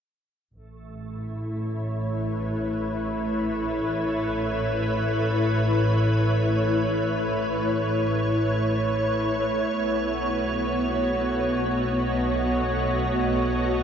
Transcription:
0.55 9.64 A1 medium
0.55 9.70 A3 medium
0.55 13.83 A3 medium
0.55 13.83 A4 medium
1.05 9.69 E4 medium
1.57 13.83 C#5 medium
2.04 12.20 B4 medium
9.69 13.83 B1 medium
9.69 13.83 B3 medium
9.88 13.83 F#4 medium
11.35 13.83 D#5 medium

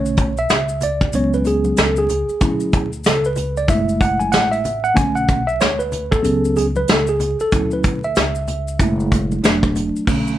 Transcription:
0.00 0.47 B1 loud
0.00 0.31 D3 medium
0.00 0.32 A3 medium
0.00 0.32 C#4 medium
0.00 0.40 C#5 medium
0.06 maracas soft
0.17 kick medium
0.17 closed hi-hat medium
0.17 maracas soft
0.37 0.84 E5 loud
0.37 maracas soft
0.50 1.11 C#2 medium
0.50 snare loud
0.50 closed hi-hat medium
0.50 maracas medium
0.69 maracas soft
0.81 1.16 D5 loud
0.81 closed hi-hat medium
0.81 low conga medium
0.81 maracas soft
1.01 kick medium
1.01 maracas soft
1.13 1.74 C#2 loud
1.13 2.06 F#3 soft
1.13 2.06 G#3 medium
1.13 2.06 B3 medium
1.13 2.06 C#4 medium
1.13 1.35 C#5 medium
1.13 closed hi-hat medium
1.13 maracas medium
1.34 1.47 B4 medium
1.34 maracas soft
1.45 1.79 G#4 medium
1.45 closed hi-hat medium
1.45 low conga medium
1.45 maracas soft
1.65 high conga medium
1.65 maracas soft
1.77 2.27 C#2 loud
1.77 1.99 A4 medium
1.77 snare loud
1.77 closed hi-hat medium
1.77 maracas medium
1.96 2.90 G#4 loud
1.96 maracas medium
2.09 closed hi-hat medium
2.09 low conga medium
2.09 maracas soft
2.29 muted upright bass stroke soft
2.29 maracas soft
2.41 3.02 D2 medium
2.41 2.86 F#3 medium
2.41 2.86 C#4 medium
2.41 2.87 E4 medium
2.41 kick loud
2.41 closed hi-hat medium
2.41 maracas medium
2.60 maracas soft
2.73 kick medium
2.73 closed hi-hat medium
2.73 maracas soft
2.93 maracas soft
3.04 3.66 C#2 medium
3.04 3.26 A4 medium
3.04 snare loud
3.04 closed hi-hat medium
3.04 maracas medium
3.24 3.58 B4 medium
3.24 maracas soft
3.36 closed hi-hat medium
3.36 low conga medium
3.36 maracas soft
3.57 3.69 D5 loud
3.57 maracas medium
3.68 4.29 F#1 loud
3.68 4.60 G#3 medium
3.68 4.60 A3 medium
3.68 4.61 E4 medium
3.68 4.02 E5 loud
3.68 kick medium
3.68 closed hi-hat medium
3.68 maracas medium
3.89 maracas soft
4.01 4.19 F#5 loud
4.01 kick loud
4.01 closed hi-hat medium
4.01 low conga medium
4.01 maracas soft
4.20 4.32 G#5 loud
4.20 high conga medium
4.20 maracas soft
4.32 4.94 A1 medium
4.32 4.51 F#5 loud
4.32 snare loud
4.32 closed hi-hat loud
4.32 maracas medium
4.51 4.85 E5 loud
4.51 closed hi-hat soft
4.51 maracas medium
4.65 closed hi-hat medium
4.65 low conga medium
4.65 maracas soft
4.84 4.97 F#5 loud
4.84 maracas soft
4.94 5.57 B1 loud
4.94 5.41 D3 medium
4.94 5.41 A3 soft
4.94 5.41 C#4 medium
4.94 5.15 G#5 loud
4.94 kick loud
4.94 closed hi-hat medium
4.94 maracas medium
5.15 5.49 F#5 loud
5.15 maracas soft
5.28 kick loud
5.28 closed hi-hat medium
5.28 maracas soft
5.47 5.61 E5 loud
5.47 maracas soft
5.61 6.21 D2 medium
5.61 5.81 C#5 loud
5.61 snare loud
5.61 closed hi-hat loud
5.61 maracas medium
5.79 6.13 B4 medium
5.79 maracas medium
5.92 closed hi-hat medium
5.92 low conga medium
5.92 maracas soft
6.11 6.57 A4 medium
6.11 kick medium
6.11 maracas soft
6.22 6.85 C#2 loud
6.22 6.69 F#3 medium
6.22 6.69 B3 medium
6.22 6.69 C#4 medium
6.22 6.56 G#4 medium
6.22 closed hi-hat medium
6.22 maracas medium
6.45 maracas soft
6.56 6.65 G#4 medium
6.56 closed hi-hat medium
6.56 low conga medium
6.56 maracas soft
6.76 6.89 B4 medium
6.76 high conga medium
6.76 maracas soft
6.88 7.38 C#2 loud
6.88 7.07 A4 medium
6.88 snare loud
6.88 closed hi-hat loud
6.88 maracas medium
7.07 7.38 G#4 medium
7.07 maracas medium
7.20 closed hi-hat medium
7.20 low conga medium
7.20 maracas soft
7.40 7.70 A4 medium
7.40 muted upright bass stroke soft
7.40 maracas soft
7.52 8.13 D2 loud
7.52 7.97 F#3 medium
7.52 7.98 C#4 soft
7.52 7.98 E4 medium
7.52 kick loud
7.52 closed hi-hat medium
7.52 maracas medium
7.71 8.05 B4 medium
7.71 maracas soft
7.84 kick loud
7.84 closed hi-hat medium
7.84 maracas soft
8.04 8.96 E5 loud
8.04 maracas soft
8.16 8.77 C#2 medium
8.16 snare loud
8.16 closed hi-hat loud
8.16 maracas medium
8.35 maracas soft
8.48 closed hi-hat medium
8.48 low conga medium
8.48 maracas soft
8.68 maracas medium
8.79 9.40 F#1 loud
8.79 9.40 G#3 medium
8.79 9.41 A3 medium
8.79 9.41 E4 medium
8.79 kick loud
8.79 closed hi-hat medium
8.79 maracas medium
9.00 maracas soft
9.12 kick medium
9.12 closed hi-hat medium
9.12 low conga medium
9.12 maracas soft
9.32 high conga medium
9.32 maracas soft
9.43 9.93 E1 loud
9.43 10.04 F#3 medium
9.43 10.04 A3 medium
9.43 10.04 D4 medium
9.43 snare loud
9.43 closed hi-hat loud
9.43 maracas medium
9.63 kick loud
9.63 maracas medium
9.76 closed hi-hat medium
9.76 low conga medium
9.76 maracas soft
9.96 muted upright bass stroke soft
9.96 maracas soft
10.07 10.38 B1 loud
10.07 10.38 D3 medium
10.07 10.38 A3 medium
10.07 10.38 C#4 medium
10.07 kick loud
10.07 crash medium
10.07 maracas medium
10.27 maracas soft

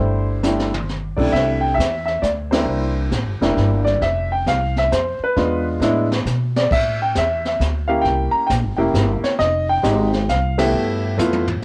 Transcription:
0.00 1.13 G1 medium
0.00 0.40 G3 medium
0.00 0.40 A3 medium
0.00 0.40 D4 medium
0.00 0.40 E4 medium
0.00 0.85 C5 medium
0.43 0.69 G3 medium
0.43 0.69 A3 medium
0.43 0.69 D4 medium
0.43 0.70 E4 medium
0.43 snare soft
0.43 hi-hat pedal medium
0.59 snare medium
0.74 mid tom medium
0.89 snare soft
1.16 1.31 B1 medium
1.16 1.74 C3 medium
1.16 1.74 G3 medium
1.16 1.74 A3 medium
1.16 1.74 D4 medium
1.16 1.75 E4 medium
1.16 1.33 D5 medium
1.16 kick medium
1.16 crash medium
1.32 1.76 C2 medium
1.32 1.60 E5 loud
1.32 brush sweep soft
1.32 kick soft
1.32 snare soft
1.61 1.77 G5 medium
1.74 2.21 E2 medium
1.74 2.04 E5 medium
1.74 kick soft
1.80 snare medium
1.80 hi-hat pedal medium
2.06 2.22 E5 medium
2.06 snare soft
2.22 2.65 D2 medium
2.22 2.29 D5 medium
2.22 kick soft
2.22 snare medium
2.22 hi-hat pedal medium
2.51 3.09 G3 medium
2.51 3.09 A#3 medium
2.51 3.09 D4 medium
2.51 3.09 E4 medium
2.51 2.93 C5 medium
2.51 snare medium
2.51 ride medium
2.65 3.09 C2 medium
2.65 brush sweep soft
3.12 3.25 A1 medium
3.12 kick soft
3.12 snare medium
3.12 hi-hat pedal medium
3.25 3.40 G1 medium
3.41 3.55 E1 medium
3.41 3.98 G3 medium
3.41 3.98 A#3 medium
3.41 3.99 D4 medium
3.41 3.99 E4 medium
3.41 snare medium
3.57 4.00 G1 loud
3.57 kick soft
3.57 snare soft
3.85 3.99 D5 medium
3.85 snare soft
4.01 4.45 F1 medium
4.01 4.32 E5 medium
4.01 brush sweep soft
4.01 kick soft
4.01 snare soft
4.32 4.47 G5 medium
4.46 4.90 C2 loud
4.46 4.74 F5 medium
4.46 kick soft
4.46 snare medium
4.46 hi-hat pedal medium
4.76 4.93 E5 medium
4.76 snare soft
4.91 5.18 F2 medium
4.91 5.19 C5 medium
4.91 kick soft
4.91 snare medium
4.91 hi-hat pedal medium
5.19 muted upright bass stroke soft
5.24 5.64 B4 medium
5.36 5.79 E2 medium
5.36 5.79 G#3 medium
5.36 5.79 B3 medium
5.36 5.79 D4 medium
5.36 5.79 F4 medium
5.36 brush sweep medium
5.36 kick soft
5.36 snare soft
5.80 6.23 A2 medium
5.80 6.07 G#3 medium
5.80 6.07 B3 medium
5.80 6.08 D4 medium
5.80 6.08 E4 medium
5.80 snare soft
5.80 hi-hat pedal medium
6.12 snare medium
6.25 6.68 B2 medium
6.25 snare medium
6.25 hi-hat pedal medium
6.56 6.70 D5 medium
6.56 snare medium
6.71 7.14 A2 medium
6.71 6.98 E5 loud
6.71 brush sweep soft
6.71 kick medium
6.71 snare soft
6.71 crash medium
7.02 7.15 G5 medium
7.15 7.59 E2 medium
7.15 7.44 E5 medium
7.15 kick soft
7.15 snare medium
7.15 hi-hat pedal medium
7.45 7.60 E5 medium
7.45 snare soft
7.60 8.03 D2 medium
7.60 kick soft
7.60 snare medium
7.60 hi-hat pedal medium
7.88 8.46 A#3 medium
7.88 8.46 C#4 medium
7.88 8.46 E4 medium
7.88 8.46 G4 medium
7.88 8.02 F5 medium
8.02 8.32 C2 medium
8.02 8.33 G5 medium
8.02 brush sweep soft
8.02 kick soft
8.02 snare soft
8.31 8.47 A#5 loud
8.31 muted upright bass stroke soft
8.47 8.63 A#1 loud
8.47 8.54 G5 medium
8.47 kick soft
8.47 snare medium
8.47 hi-hat pedal medium
8.63 8.77 G1 medium
8.77 8.92 E1 medium
8.77 9.35 A#3 medium
8.77 9.35 C#4 medium
8.77 9.35 E4 medium
8.77 9.35 G4 medium
8.77 8.82 G5 medium
8.94 9.21 G1 loud
8.94 kick soft
8.94 snare medium
8.94 hi-hat pedal medium
9.22 9.29 C#5 medium
9.22 muted upright bass stroke soft
9.22 snare medium
9.39 9.82 F1 medium
9.39 9.66 D#5 loud
9.39 brush sweep soft
9.39 kick soft
9.39 snare soft
9.69 10.30 G5 medium
9.82 10.26 G#1 loud
9.82 10.09 G#3 medium
9.82 10.09 C4 medium
9.82 10.10 D#4 medium
9.82 10.10 G4 medium
9.82 kick soft
9.82 snare medium
9.82 hi-hat pedal medium
10.13 snare soft
10.29 10.72 C2 medium
10.29 10.59 F5 medium
10.29 kick soft
10.29 snare medium
10.29 hi-hat pedal soft
10.58 11.15 A3 medium
10.58 11.15 B3 medium
10.58 11.15 E4 medium
10.58 11.15 G4 medium
10.58 11.64 E5 medium
10.58 snare medium
10.58 ride medium
10.72 11.16 G2 medium
10.72 brush sweep soft
11.18 11.61 F2 medium
11.18 11.44 A3 medium
11.18 11.44 B3 medium
11.18 11.44 E4 medium
11.18 11.44 F4 medium
11.18 hi-hat pedal medium
11.18 high tom medium
11.33 high tom medium
11.48 floor tom medium

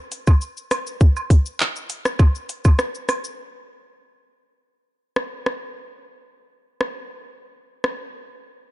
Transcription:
0.12 closed hi-hat medium
0.12 cabasa medium
0.12 shaker soft
0.27 kick medium
0.27 high woodblock medium
0.27 shaker medium
0.41 shaker medium
0.57 shaker medium
0.71 cross-stick loud
0.71 closed hi-hat medium
0.71 cabasa medium
0.71 high woodblock medium
0.71 shaker medium
0.87 shaker medium
1.01 kick loud
1.01 shaker medium
1.17 high woodblock medium
1.17 shaker medium
1.30 kick medium
1.30 closed hi-hat medium
1.30 cabasa medium
1.30 shaker medium
1.46 shaker medium
1.60 clap loud
1.60 shaker medium
1.76 shaker medium
1.90 closed hi-hat medium
1.90 cabasa medium
1.90 shaker medium
2.05 cross-stick loud
2.05 shaker medium
2.19 kick loud
2.19 high woodblock medium
2.19 shaker medium
2.35 shaker medium
2.49 closed hi-hat medium
2.49 cabasa medium
2.49 shaker soft
2.65 kick medium
2.65 high woodblock medium
2.65 shaker medium
2.79 cross-stick loud
2.79 shaker medium
2.95 shaker medium
3.09 cross-stick medium
3.09 closed hi-hat medium
3.09 cabasa medium
3.09 high woodblock medium
3.09 shaker medium
3.24 shaker medium
5.16 cross-stick medium
5.46 cross-stick medium
6.81 cross-stick medium
7.84 cross-stick medium

